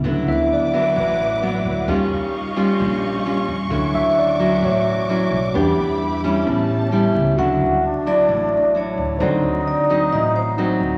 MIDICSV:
0, 0, Header, 1, 7, 480
1, 0, Start_track
1, 0, Key_signature, 2, "major"
1, 0, Tempo, 458015
1, 41, Time_signature, 4, 2, 24, 8
1, 11505, End_track
2, 0, Start_track
2, 0, Title_t, "String section"
2, 0, Program_c, 0, 48
2, 41, Note_on_c, 0, 86, 74
2, 48, Note_on_c, 0, 78, 61
2, 49, Note_on_c, 0, 76, 64
2, 50, Note_on_c, 0, 71, 63
2, 1948, Note_off_c, 0, 86, 0
2, 1951, Note_off_c, 0, 78, 0
2, 1952, Note_off_c, 0, 71, 0
2, 1952, Note_off_c, 0, 76, 0
2, 1979, Note_on_c, 0, 77, 65
2, 1979, Note_on_c, 0, 85, 78
2, 1982, Note_on_c, 0, 67, 70
2, 1983, Note_on_c, 0, 75, 61
2, 3878, Note_off_c, 0, 77, 0
2, 3879, Note_off_c, 0, 67, 0
2, 3880, Note_off_c, 0, 75, 0
2, 3895, Note_on_c, 0, 86, 66
2, 3899, Note_on_c, 0, 66, 75
2, 3904, Note_on_c, 0, 76, 65
2, 5780, Note_off_c, 0, 85, 0
2, 5797, Note_off_c, 0, 66, 0
2, 5800, Note_off_c, 0, 76, 0
2, 5809, Note_on_c, 0, 67, 70
2, 5811, Note_on_c, 0, 76, 66
2, 5814, Note_on_c, 0, 83, 74
2, 6745, Note_off_c, 0, 86, 0
2, 6761, Note_off_c, 0, 67, 0
2, 6763, Note_off_c, 0, 83, 0
2, 6773, Note_on_c, 0, 81, 81
2, 6776, Note_on_c, 0, 67, 70
2, 6777, Note_on_c, 0, 73, 64
2, 7711, Note_off_c, 0, 76, 0
2, 7722, Note_off_c, 0, 81, 0
2, 7724, Note_off_c, 0, 67, 0
2, 7724, Note_off_c, 0, 73, 0
2, 11505, End_track
3, 0, Start_track
3, 0, Title_t, "Vibraphone"
3, 0, Program_c, 1, 11
3, 7741, Note_on_c, 1, 78, 89
3, 8182, Note_off_c, 1, 78, 0
3, 8461, Note_on_c, 1, 74, 81
3, 9193, Note_on_c, 1, 73, 80
3, 9195, Note_off_c, 1, 74, 0
3, 9666, Note_on_c, 1, 72, 77
3, 9674, Note_off_c, 1, 73, 0
3, 10140, Note_on_c, 1, 74, 81
3, 10150, Note_off_c, 1, 72, 0
3, 10611, Note_on_c, 1, 75, 92
3, 10626, Note_off_c, 1, 74, 0
3, 10717, Note_off_c, 1, 75, 0
3, 10856, Note_on_c, 1, 72, 73
3, 11296, Note_off_c, 1, 72, 0
3, 11505, End_track
4, 0, Start_track
4, 0, Title_t, "Tine electric piano"
4, 0, Program_c, 2, 4
4, 0, Control_c, 2, 64, 127
4, 55, Control_c, 2, 64, 0
4, 224, Control_c, 2, 64, 127
4, 282, Note_on_c, 2, 54, 40
4, 289, Note_on_c, 2, 59, 38
4, 294, Note_on_c, 2, 64, 47
4, 297, Note_on_c, 2, 76, 71
4, 523, Note_off_c, 2, 76, 0
4, 555, Note_on_c, 2, 74, 53
4, 988, Note_off_c, 2, 74, 0
4, 1045, Note_on_c, 2, 71, 47
4, 1259, Note_off_c, 2, 71, 0
4, 1925, Note_off_c, 2, 54, 0
4, 1928, Note_off_c, 2, 59, 0
4, 1931, Note_off_c, 2, 64, 0
4, 1965, Note_on_c, 2, 55, 41
4, 1971, Note_on_c, 2, 61, 37
4, 1980, Note_on_c, 2, 65, 45
4, 1982, Control_c, 2, 64, 0
4, 2160, Control_c, 2, 64, 127
4, 2652, Note_off_c, 2, 55, 0
4, 2655, Note_off_c, 2, 61, 0
4, 2660, Note_off_c, 2, 65, 0
4, 2926, Note_on_c, 2, 55, 37
4, 2933, Note_on_c, 2, 61, 34
4, 2936, Note_on_c, 2, 65, 39
4, 3144, Note_off_c, 2, 55, 0
4, 3148, Note_off_c, 2, 61, 0
4, 3149, Note_off_c, 2, 65, 0
4, 3887, Note_on_c, 2, 54, 45
4, 3889, Note_on_c, 2, 61, 38
4, 3897, Note_on_c, 2, 64, 49
4, 3905, Control_c, 2, 64, 0
4, 4081, Control_c, 2, 64, 127
4, 4138, Note_on_c, 2, 76, 78
4, 4208, Note_off_c, 2, 54, 0
4, 4210, Note_off_c, 2, 61, 0
4, 4214, Note_off_c, 2, 64, 0
4, 4368, Note_off_c, 2, 76, 0
4, 4390, Note_on_c, 2, 74, 57
4, 4608, Note_on_c, 2, 54, 38
4, 4610, Note_on_c, 2, 61, 34
4, 4615, Note_on_c, 2, 64, 41
4, 4826, Note_off_c, 2, 54, 0
4, 4827, Note_off_c, 2, 61, 0
4, 4828, Note_off_c, 2, 74, 0
4, 4830, Note_off_c, 2, 64, 0
4, 4874, Note_on_c, 2, 73, 65
4, 5011, Note_off_c, 2, 73, 0
4, 5809, Note_on_c, 2, 55, 41
4, 5820, Note_on_c, 2, 62, 38
4, 5824, Control_c, 2, 64, 0
4, 6040, Control_c, 2, 64, 127
4, 6729, Note_off_c, 2, 55, 0
4, 6734, Note_off_c, 2, 62, 0
4, 6768, Note_on_c, 2, 55, 43
4, 6776, Note_on_c, 2, 59, 37
4, 6780, Note_on_c, 2, 61, 45
4, 6784, Control_c, 2, 64, 0
4, 6977, Control_c, 2, 64, 127
4, 7089, Note_off_c, 2, 55, 0
4, 7093, Note_off_c, 2, 59, 0
4, 7095, Note_off_c, 2, 61, 0
4, 7717, Note_on_c, 2, 66, 42
4, 7739, Note_on_c, 2, 85, 43
4, 7746, Control_c, 2, 64, 0
4, 7758, Note_on_c, 2, 76, 47
4, 7943, Control_c, 2, 64, 127
4, 9602, Note_off_c, 2, 66, 0
4, 9609, Note_on_c, 2, 63, 48
4, 9613, Note_off_c, 2, 85, 0
4, 9623, Note_off_c, 2, 76, 0
4, 9629, Note_on_c, 2, 72, 43
4, 9650, Note_on_c, 2, 74, 41
4, 9663, Control_c, 2, 64, 0
4, 9672, Note_on_c, 2, 78, 53
4, 9867, Control_c, 2, 64, 127
4, 11035, Note_off_c, 2, 63, 0
4, 11045, Note_off_c, 2, 72, 0
4, 11056, Note_off_c, 2, 74, 0
4, 11061, Note_on_c, 2, 63, 34
4, 11067, Note_off_c, 2, 78, 0
4, 11072, Note_on_c, 2, 72, 32
4, 11081, Note_on_c, 2, 74, 33
4, 11096, Note_on_c, 2, 78, 36
4, 11505, Note_off_c, 2, 63, 0
4, 11505, Note_off_c, 2, 72, 0
4, 11505, Note_off_c, 2, 74, 0
4, 11505, Note_off_c, 2, 78, 0
4, 11505, End_track
5, 0, Start_track
5, 0, Title_t, "Alto flute"
5, 0, Program_c, 3, 73
5, 7725, Note_on_c, 3, 62, 83
5, 9660, Note_on_c, 3, 63, 94
5, 9676, Note_off_c, 3, 62, 0
5, 11505, Note_off_c, 3, 63, 0
5, 11505, End_track
6, 0, Start_track
6, 0, Title_t, "Nylon-string guitar"
6, 0, Program_c, 4, 24
6, 41, Note_on_c, 4, 50, 54
6, 42, Note_on_c, 4, 54, 53
6, 50, Note_on_c, 4, 59, 54
6, 53, Note_on_c, 4, 64, 63
6, 520, Note_off_c, 4, 54, 0
6, 522, Note_off_c, 4, 59, 0
6, 526, Note_off_c, 4, 64, 0
6, 767, Note_on_c, 4, 54, 53
6, 772, Note_on_c, 4, 59, 57
6, 778, Note_on_c, 4, 64, 60
6, 982, Note_off_c, 4, 50, 0
6, 1004, Note_on_c, 4, 45, 55
6, 1449, Note_off_c, 4, 54, 0
6, 1451, Note_off_c, 4, 59, 0
6, 1453, Note_off_c, 4, 64, 0
6, 1490, Note_on_c, 4, 54, 55
6, 1498, Note_on_c, 4, 59, 51
6, 1499, Note_on_c, 4, 64, 58
6, 1931, Note_off_c, 4, 54, 0
6, 1933, Note_off_c, 4, 59, 0
6, 1935, Note_off_c, 4, 64, 0
6, 1943, Note_off_c, 4, 45, 0
6, 1968, Note_on_c, 4, 51, 53
6, 1974, Note_on_c, 4, 55, 57
6, 1978, Note_on_c, 4, 61, 55
6, 1985, Note_on_c, 4, 65, 60
6, 2448, Note_off_c, 4, 55, 0
6, 2452, Note_off_c, 4, 61, 0
6, 2452, Note_off_c, 4, 65, 0
6, 2686, Note_on_c, 4, 55, 65
6, 2691, Note_on_c, 4, 61, 55
6, 2694, Note_on_c, 4, 65, 67
6, 2907, Note_off_c, 4, 51, 0
6, 2932, Note_on_c, 4, 46, 49
6, 3371, Note_off_c, 4, 55, 0
6, 3371, Note_off_c, 4, 61, 0
6, 3374, Note_off_c, 4, 65, 0
6, 3411, Note_on_c, 4, 55, 52
6, 3416, Note_on_c, 4, 61, 55
6, 3420, Note_on_c, 4, 65, 61
6, 3721, Note_off_c, 4, 55, 0
6, 3721, Note_off_c, 4, 61, 0
6, 3725, Note_off_c, 4, 65, 0
6, 3869, Note_off_c, 4, 46, 0
6, 3879, Note_on_c, 4, 50, 56
6, 3885, Note_on_c, 4, 54, 50
6, 3890, Note_on_c, 4, 61, 52
6, 3892, Note_on_c, 4, 64, 64
6, 4570, Note_off_c, 4, 54, 0
6, 4571, Note_off_c, 4, 61, 0
6, 4574, Note_off_c, 4, 64, 0
6, 4610, Note_on_c, 4, 54, 61
6, 4615, Note_on_c, 4, 61, 53
6, 4620, Note_on_c, 4, 64, 66
6, 4824, Note_off_c, 4, 50, 0
6, 4852, Note_on_c, 4, 45, 54
6, 5293, Note_off_c, 4, 54, 0
6, 5296, Note_off_c, 4, 61, 0
6, 5298, Note_off_c, 4, 64, 0
6, 5340, Note_on_c, 4, 54, 59
6, 5345, Note_on_c, 4, 61, 53
6, 5347, Note_on_c, 4, 64, 60
6, 5646, Note_off_c, 4, 54, 0
6, 5647, Note_off_c, 4, 61, 0
6, 5649, Note_off_c, 4, 64, 0
6, 5788, Note_off_c, 4, 45, 0
6, 5806, Note_on_c, 4, 59, 59
6, 5811, Note_on_c, 4, 52, 52
6, 5817, Note_on_c, 4, 62, 54
6, 5819, Note_on_c, 4, 67, 64
6, 6287, Note_off_c, 4, 59, 0
6, 6291, Note_off_c, 4, 62, 0
6, 6292, Note_off_c, 4, 67, 0
6, 6533, Note_off_c, 4, 52, 0
6, 6538, Note_on_c, 4, 55, 61
6, 6545, Note_on_c, 4, 61, 61
6, 6548, Note_on_c, 4, 64, 62
6, 6774, Note_on_c, 4, 45, 54
6, 7216, Note_off_c, 4, 55, 0
6, 7220, Note_off_c, 4, 61, 0
6, 7221, Note_off_c, 4, 64, 0
6, 7252, Note_on_c, 4, 55, 60
6, 7258, Note_on_c, 4, 61, 51
6, 7263, Note_on_c, 4, 64, 66
6, 7693, Note_off_c, 4, 55, 0
6, 7696, Note_off_c, 4, 61, 0
6, 7698, Note_off_c, 4, 64, 0
6, 7708, Note_off_c, 4, 45, 0
6, 7730, Note_on_c, 4, 50, 53
6, 7738, Note_on_c, 4, 54, 52
6, 7741, Note_on_c, 4, 64, 57
6, 8210, Note_off_c, 4, 54, 0
6, 8213, Note_off_c, 4, 64, 0
6, 8451, Note_on_c, 4, 54, 53
6, 8458, Note_on_c, 4, 64, 63
6, 8666, Note_off_c, 4, 50, 0
6, 8689, Note_on_c, 4, 45, 49
6, 9131, Note_off_c, 4, 54, 0
6, 9134, Note_off_c, 4, 64, 0
6, 9168, Note_on_c, 4, 54, 52
6, 9180, Note_on_c, 4, 64, 53
6, 9609, Note_off_c, 4, 54, 0
6, 9615, Note_off_c, 4, 64, 0
6, 9623, Note_off_c, 4, 45, 0
6, 9644, Note_on_c, 4, 50, 55
6, 9646, Note_on_c, 4, 54, 55
6, 9650, Note_on_c, 4, 60, 47
6, 9656, Note_on_c, 4, 63, 61
6, 10326, Note_off_c, 4, 54, 0
6, 10329, Note_off_c, 4, 60, 0
6, 10332, Note_off_c, 4, 63, 0
6, 10372, Note_on_c, 4, 54, 60
6, 10378, Note_on_c, 4, 60, 55
6, 10383, Note_on_c, 4, 63, 66
6, 10580, Note_off_c, 4, 50, 0
6, 10609, Note_on_c, 4, 45, 53
6, 11049, Note_off_c, 4, 54, 0
6, 11051, Note_off_c, 4, 60, 0
6, 11054, Note_off_c, 4, 63, 0
6, 11088, Note_on_c, 4, 54, 58
6, 11092, Note_on_c, 4, 60, 56
6, 11094, Note_on_c, 4, 63, 59
6, 11505, Note_off_c, 4, 45, 0
6, 11505, Note_off_c, 4, 54, 0
6, 11505, Note_off_c, 4, 60, 0
6, 11505, Note_off_c, 4, 63, 0
6, 11505, End_track
7, 0, Start_track
7, 0, Title_t, "Upright bass"
7, 0, Program_c, 5, 32
7, 40, Note_on_c, 5, 38, 92
7, 265, Note_off_c, 5, 38, 0
7, 282, Note_on_c, 5, 38, 78
7, 962, Note_off_c, 5, 38, 0
7, 1006, Note_on_c, 5, 33, 91
7, 1685, Note_off_c, 5, 33, 0
7, 1728, Note_on_c, 5, 38, 86
7, 1951, Note_off_c, 5, 38, 0
7, 1968, Note_on_c, 5, 39, 98
7, 2191, Note_off_c, 5, 39, 0
7, 2212, Note_on_c, 5, 39, 81
7, 2889, Note_off_c, 5, 39, 0
7, 2934, Note_on_c, 5, 34, 96
7, 3611, Note_off_c, 5, 34, 0
7, 3652, Note_on_c, 5, 39, 83
7, 3875, Note_off_c, 5, 39, 0
7, 3882, Note_on_c, 5, 38, 96
7, 4110, Note_off_c, 5, 38, 0
7, 4133, Note_on_c, 5, 38, 81
7, 4811, Note_off_c, 5, 38, 0
7, 4848, Note_on_c, 5, 33, 92
7, 5529, Note_off_c, 5, 33, 0
7, 5565, Note_on_c, 5, 35, 91
7, 5792, Note_off_c, 5, 35, 0
7, 5816, Note_on_c, 5, 40, 103
7, 6037, Note_off_c, 5, 40, 0
7, 6053, Note_on_c, 5, 40, 86
7, 6731, Note_off_c, 5, 40, 0
7, 6777, Note_on_c, 5, 33, 95
7, 7452, Note_off_c, 5, 33, 0
7, 7493, Note_on_c, 5, 37, 89
7, 7715, Note_off_c, 5, 37, 0
7, 7737, Note_on_c, 5, 38, 89
7, 7958, Note_off_c, 5, 38, 0
7, 7972, Note_on_c, 5, 38, 76
7, 8649, Note_off_c, 5, 38, 0
7, 8684, Note_on_c, 5, 33, 89
7, 9364, Note_off_c, 5, 33, 0
7, 9407, Note_on_c, 5, 38, 84
7, 9630, Note_off_c, 5, 38, 0
7, 9643, Note_on_c, 5, 38, 94
7, 9868, Note_off_c, 5, 38, 0
7, 9883, Note_on_c, 5, 38, 80
7, 10561, Note_off_c, 5, 38, 0
7, 10607, Note_on_c, 5, 33, 89
7, 11282, Note_off_c, 5, 33, 0
7, 11322, Note_on_c, 5, 38, 82
7, 11505, Note_off_c, 5, 38, 0
7, 11505, End_track
0, 0, End_of_file